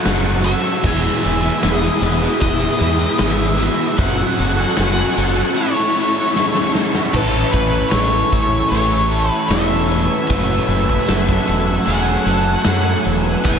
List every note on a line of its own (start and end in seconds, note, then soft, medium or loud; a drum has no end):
0.00 0.41 F#3 medium
0.00 0.82 A4 medium
0.00 0.52 F#5 loud
0.00 0.82 F#5 medium
0.00 0.82 C#6 medium
0.00 tambourine medium
0.04 0.53 F#1 loud
0.04 0.43 C#4 medium
0.04 0.44 F#4 loud
0.04 0.44 A4 loud
0.04 snare loud
0.04 closed hi-hat medium
0.42 0.80 F#3 medium
0.42 0.81 C#4 medium
0.42 0.82 F#4 medium
0.42 0.84 F#4 medium
0.42 0.82 A4 medium
0.42 1.74 E5 medium
0.42 closed hi-hat medium
0.42 tambourine medium
0.63 0.82 C#4 medium
0.63 0.82 F#4 medium
0.63 0.81 A4 medium
0.63 tambourine soft
0.81 1.08 E1 medium
0.81 1.59 E3 medium
0.81 1.19 G#3 medium
0.81 1.21 B3 medium
0.81 1.21 E4 loud
0.81 1.22 G#4 loud
0.81 kick loud
0.81 tambourine soft
0.81 crash loud
0.85 3.97 E4 medium
0.85 1.62 G#4 loud
0.85 3.96 B4 medium
1.21 1.59 G#3 medium
1.21 1.42 B3 medium
1.21 1.41 E4 medium
1.21 1.40 G#4 medium
1.21 closed hi-hat medium
1.21 tambourine medium
1.25 1.48 E1 medium
1.41 1.61 B3 medium
1.41 1.61 E4 medium
1.41 1.61 G#4 medium
1.41 tambourine soft
1.60 1.87 E1 loud
1.60 2.20 E3 medium
1.60 1.99 G#3 loud
1.60 1.83 B3 loud
1.60 1.82 E4 medium
1.60 1.80 G#4 loud
1.60 2.02 G#4 medium
1.60 snare loud
1.60 closed hi-hat loud
1.60 tambourine loud
1.74 2.40 D#5 medium
1.81 2.00 B3 medium
1.81 2.01 E4 medium
1.81 2.02 G#4 medium
1.81 tambourine soft
2.00 2.26 E1 medium
2.00 2.60 G#3 medium
2.00 2.23 B3 medium
2.00 2.22 E4 medium
2.00 2.42 F#4 medium
2.00 2.20 G#4 medium
2.00 closed hi-hat medium
2.00 tambourine medium
2.21 2.62 B3 medium
2.21 2.60 E4 medium
2.21 2.58 G#4 medium
2.40 2.65 E1 medium
2.40 3.21 E4 medium
2.40 3.19 D#5 medium
2.40 kick loud
2.40 closed hi-hat loud
2.40 tambourine soft
2.59 2.79 B3 medium
2.59 2.79 E4 medium
2.59 2.80 G#4 medium
2.59 tambourine soft
2.78 3.04 E2 medium
2.78 3.19 G#3 medium
2.78 2.99 B3 medium
2.78 2.98 E4 medium
2.78 2.97 G#4 medium
2.78 closed hi-hat medium
2.98 3.20 B3 medium
2.98 3.21 E4 medium
2.98 3.21 G#4 medium
2.98 tambourine medium
3.18 3.68 G#1 medium
3.18 3.96 E3 medium
3.18 3.57 G#3 loud
3.18 3.58 B3 medium
3.18 3.59 E4 loud
3.18 3.60 G#4 medium
3.18 3.30 D#5 loud
3.18 snare loud
3.18 closed hi-hat medium
3.18 tambourine medium
3.30 3.98 E5 loud
3.57 3.96 G#3 medium
3.57 3.97 B3 medium
3.57 3.97 E4 medium
3.57 3.99 F#4 medium
3.57 closed hi-hat medium
3.57 tambourine medium
3.61 3.97 G#4 medium
3.78 3.97 B3 medium
3.78 3.97 E4 medium
3.78 3.96 G#4 medium
3.78 tambourine soft
3.97 4.22 F#1 medium
3.97 4.36 F#3 medium
3.97 4.37 C#4 medium
3.97 4.38 F#4 medium
3.97 7.11 A4 medium
3.97 4.39 A4 medium
3.97 5.61 F#5 medium
3.97 5.55 F#5 medium
3.97 5.55 C#6 medium
3.97 kick loud
3.97 closed hi-hat loud
4.01 5.56 G#5 medium
4.17 tambourine soft
4.37 4.63 F#1 medium
4.37 4.75 F#3 medium
4.37 4.59 C#4 medium
4.37 4.58 F#4 medium
4.37 4.56 A4 medium
4.37 closed hi-hat medium
4.37 tambourine medium
4.57 4.76 C#4 medium
4.57 4.77 F#4 medium
4.57 4.78 A4 medium
4.57 tambourine soft
4.76 5.02 F#1 medium
4.76 5.13 F#3 medium
4.76 4.98 C#4 loud
4.76 4.96 F#4 loud
4.76 4.94 A4 loud
4.76 5.17 G#5 medium
4.76 snare loud
4.76 closed hi-hat loud
4.76 tambourine loud
4.96 5.14 C#4 medium
4.96 5.15 F#4 medium
4.96 5.16 A4 medium
5.14 5.41 F#1 medium
5.14 5.53 F#3 medium
5.14 5.36 C#4 medium
5.14 5.35 F#4 medium
5.14 5.57 F#4 medium
5.14 5.33 A4 medium
5.14 closed hi-hat medium
5.14 tambourine medium
5.34 5.53 C#4 medium
5.34 5.54 F#4 medium
5.34 5.53 A4 medium
5.34 tambourine soft
5.54 5.93 A3 loud
5.54 5.76 C#4 medium
5.54 5.74 E4 medium
5.54 6.35 E4 medium
5.54 5.73 A4 medium
5.54 6.71 C#5 medium
5.59 7.14 C#5 medium
5.59 7.14 E5 medium
5.59 7.14 C#6 medium
5.74 5.94 C#4 medium
5.74 5.95 E4 medium
5.74 5.96 A4 medium
5.94 6.32 A3 medium
5.94 6.16 C#4 medium
5.94 6.14 E4 medium
5.94 6.13 A4 medium
6.14 6.33 C#4 medium
6.14 6.34 E4 medium
6.14 6.34 A4 medium
6.33 6.72 A3 medium
6.33 6.73 C#4 medium
6.33 6.74 E4 loud
6.33 6.75 A4 medium
6.33 snare medium
6.55 snare medium
6.73 7.11 A3 medium
6.73 7.12 C#4 medium
6.73 7.12 E4 medium
6.73 7.14 F#4 medium
6.73 7.12 A4 medium
6.73 snare medium
6.94 7.13 C#4 medium
6.94 7.13 E4 medium
6.94 7.12 A4 medium
6.94 snare medium
7.13 7.43 A1 loud
7.13 8.32 A2 medium
7.13 7.91 E3 loud
7.13 13.41 A3 medium
7.13 7.92 A3 medium
7.13 7.93 C#4 medium
7.13 7.94 E4 loud
7.13 7.54 A4 medium
7.13 7.93 B4 loud
7.13 10.27 E5 medium
7.13 13.59 G#5 medium
7.13 10.27 C#6 medium
7.13 kick loud
7.13 crash loud
7.52 7.82 A1 medium
7.52 7.89 B4 medium
7.52 kick loud
7.52 closed hi-hat medium
7.52 tambourine medium
7.72 closed hi-hat soft
7.90 8.21 A1 loud
7.90 8.72 E3 medium
7.90 8.72 A3 medium
7.90 8.73 C#4 medium
7.90 8.68 C#5 loud
7.90 snare loud
7.90 closed hi-hat loud
7.90 tambourine medium
7.94 8.74 E4 medium
7.94 8.71 A4 medium
8.13 closed hi-hat soft
8.32 8.61 A1 medium
8.32 kick medium
8.32 closed hi-hat medium
8.32 tambourine medium
8.52 closed hi-hat soft
8.70 9.29 A1 loud
8.70 9.90 A2 loud
8.70 9.50 E3 loud
8.70 9.50 A3 loud
8.70 9.11 G#4 medium
8.70 9.30 C#5 loud
8.70 closed hi-hat loud
8.70 tambourine medium
8.74 9.52 C#4 loud
8.74 9.53 E4 loud
8.91 closed hi-hat medium
8.91 tambourine soft
9.11 9.90 A4 medium
9.11 closed hi-hat medium
9.30 9.52 B4 loud
9.48 10.07 E1 loud
9.48 10.28 E3 medium
9.48 10.27 A3 medium
9.48 10.27 E5 loud
9.48 snare loud
9.48 closed hi-hat loud
9.48 tambourine medium
9.53 10.28 C#4 medium
9.53 10.31 E4 medium
9.70 closed hi-hat medium
9.70 tambourine soft
9.88 10.28 B4 medium
9.88 snare soft
9.88 closed hi-hat medium
9.88 tambourine medium
10.28 10.58 F#1 loud
10.28 11.06 F#3 medium
10.28 11.07 A3 loud
10.28 11.08 C#4 loud
10.28 11.09 F#4 loud
10.28 11.08 B4 loud
10.28 11.86 E5 loud
10.28 13.42 F#5 medium
10.28 13.42 E6 medium
10.28 kick loud
10.28 closed hi-hat loud
10.50 closed hi-hat soft
10.67 10.97 F#1 medium
10.67 closed hi-hat medium
10.67 tambourine medium
10.89 kick medium
10.89 closed hi-hat soft
11.06 11.37 F#1 loud
11.06 11.85 F#3 medium
11.06 11.86 A3 medium
11.06 11.86 C#4 medium
11.06 11.88 F#4 medium
11.06 11.88 A4 medium
11.06 snare loud
11.06 closed hi-hat loud
11.06 tambourine medium
11.28 kick medium
11.28 closed hi-hat soft
11.47 11.77 E1 medium
11.47 closed hi-hat medium
11.47 tambourine medium
11.68 closed hi-hat soft
11.86 12.16 E1 medium
11.86 12.64 F#3 medium
11.86 12.64 A3 loud
11.86 12.66 C#4 medium
11.86 12.66 F#4 loud
11.86 12.27 G#4 loud
11.86 13.01 F#5 medium
11.86 closed hi-hat loud
11.86 tambourine medium
12.26 12.55 F#1 medium
12.26 13.06 A4 medium
12.26 closed hi-hat medium
12.46 closed hi-hat soft
12.64 12.94 F#2 loud
12.64 13.42 F#3 medium
12.64 13.42 A3 medium
12.64 13.43 C#4 medium
12.64 13.43 F#4 medium
12.64 snare loud
12.64 closed hi-hat medium
12.64 tambourine loud
12.85 tambourine soft
13.04 13.34 E1 medium
13.04 13.45 B4 medium
13.04 closed hi-hat medium
13.04 tambourine medium
13.24 closed hi-hat soft
13.44 13.59 E1 medium
13.44 13.59 E3 medium
13.44 13.59 G#3 medium
13.44 13.59 B3 loud
13.44 13.59 E4 loud
13.44 13.59 E4 medium
13.44 13.59 B4 loud
13.44 13.59 G#5 loud
13.44 kick loud
13.44 crash medium
13.48 13.59 B4 medium
13.48 13.59 D#6 medium